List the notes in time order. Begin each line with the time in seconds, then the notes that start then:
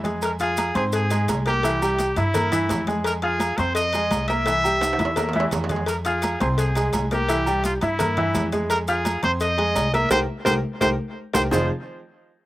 Already playing: F2
0.04 G#3 G#4 G#5, cowbell, high conga, maracas
0.22 A#4, cowbell, high conga, low agogo, maracas
0.39 F4 G#4 F5 F6, cowbell, high conga, maracas
0.57 cowbell, high conga, low timbale, low agogo, maracas
0.75 G#2 C4 G#4 C5 C6, cowbell, high conga, low agogo, maracas
0.93 G#4, cowbell, high conga, maracas
1.10 G#3 G#4 G#5, cowbell, high conga, low agogo, maracas
1.28 C2, cowbell, high conga, low timbale, low agogo, maracas
1.46 A#3 G4 A#4 A#5, cowbell, maracas
1.63 E3 E4 E5, cowbell, high conga, low agogo, maracas
1.82 G3 G4 G5, high conga, low agogo, maracas
1.99 cowbell, high conga, low timbale, maracas
2.16 G2 E4 E5 E6, cowbell, high conga, low agogo, maracas
2.34 A#3 A#4 A#5, cowbell, high conga, low conga, low agogo, maracas
2.52 E3 E4 E5, cowbell, high conga, low conga, maracas
2.69 F2, cowbell, high conga, low timbale, low agogo, maracas
2.87 G#3 G#4 G#5, cowbell, high conga, maracas
3.04 A#4, cowbell, high conga, low agogo, maracas
3.22 F4 G#4 F5 F6, cowbell, high conga
3.40 cowbell, high conga, low timbale, low agogo, maracas
3.57 F2 C4 C5 C6, cowbell, high conga, low agogo, maracas
3.75 D#5, cowbell, high conga, maracas
3.93 G#3 G#4 G#5, cowbell, high conga, low agogo, maracas
4.11 C2, cowbell, high conga, low timbale, low agogo, maracas
4.28 A#3 A#4 E5 A#5, cowbell, maracas
4.46 E3 E4 E5, cowbell, high conga, low agogo, maracas
4.64 G3 G4 G5, high conga, low agogo, maracas
4.81 cowbell, high conga, high timbale, maracas
4.93 high timbale
4.99 E2 E4 E5 E6, cowbell, high conga, low agogo, maracas
5.05 low timbale
5.16 A#3 A#4 A#5, cowbell, high conga, low conga, low timbale, low agogo, maracas
5.29 low timbale
5.33 E3 E4 E5, cowbell, high conga
5.40 low timbale
5.51 F2, cowbell, low conga, low timbale, low agogo, maracas
5.64 low timbale
5.69 G#3 G#4 G#5, cowbell, low conga, maracas
5.76 low timbale
5.86 A#4, cowbell, high conga, low agogo, maracas
6.05 F4 G#4 F5 F6, cowbell, high conga, maracas
6.22 cowbell, high conga, low timbale, low agogo, maracas
6.40 C2 C4 G#4 C5 C6, cowbell, high conga, low agogo, maracas
6.58 G#4, cowbell, high conga, maracas
6.75 G#3 G#4 G#5, cowbell, high conga, low agogo, maracas
6.93 C2, cowbell, high conga, low timbale, low agogo, maracas
7.11 A#3 G4 A#4 A#5, cowbell, high conga, maracas
7.29 E3 E4 E5, cowbell, high conga, low agogo, maracas
7.46 G3 G4 G5, high conga, low agogo, maracas
7.64 F4, cowbell, high conga, low timbale, maracas
7.81 G2 E4 E5 E6, cowbell, high conga, low agogo, maracas
7.99 A#3 A#4 A#5, cowbell, high conga, low conga, low agogo, maracas
8.17 E3 E4 E5, cowbell, high conga, low conga
8.35 F2, cowbell, high conga, low timbale, low agogo, maracas
8.52 G#3 G#4 G#5, cowbell, high conga, maracas
8.70 A#4, cowbell, high conga, low agogo, maracas
8.88 F4 G#4 F5 F6, cowbell, high conga, maracas
9.05 cowbell, high conga, low timbale, low agogo, maracas
9.23 F2 C4 C5 C6, cowbell, high conga, low agogo, maracas
9.40 D#5, cowbell, high conga, maracas
9.58 G#3 G#4 G#5, cowbell, high conga, low agogo
9.76 C2, cowbell, high conga, low timbale, low agogo, maracas
9.94 A#3 A#4 E5 A#5, cowbell, high conga, maracas
10.10 C2 G4 A#4 C5, cowbell, high conga, high timbale, maracas
10.45 C2 G4 A#4 C5, cowbell, high conga, high timbale, maracas
10.81 C2 G4 A#4 C5, cowbell, high conga, high timbale, maracas
11.33 C2 G4 A#4 C5, cowbell, high conga, high timbale, maracas
11.51 F1 F3 C4 D#4 F4 G#4 C5, low bongo, low conga, low timbale, maracas